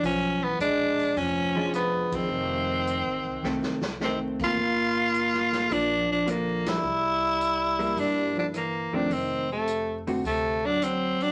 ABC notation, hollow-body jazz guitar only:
X:1
M:4/4
L:1/8
Q:"Swing" 1/4=106
K:Fmix
V:1 name="Hollow-body jazz guitar"
z4 z [F,^G,D]3 | z4 [E,A,C] z [E,A,C]2 | z4 [F,B,D] z [F,B,D]2 | z3 [G,B,=E]3 z [_E,A,C] |
z3 [D,A,C_G] z4 |]